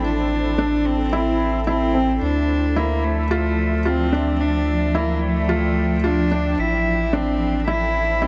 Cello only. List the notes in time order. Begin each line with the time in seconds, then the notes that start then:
0.04 D4
0.85 C4
1.67 C4
2.22 D4
2.77 A#3
3.04 A3
3.86 C4
4.41 D4
4.95 A#3
5.23 A3
6.04 D4
6.59 E4
7.13 C4
7.68 E4
8.22 C4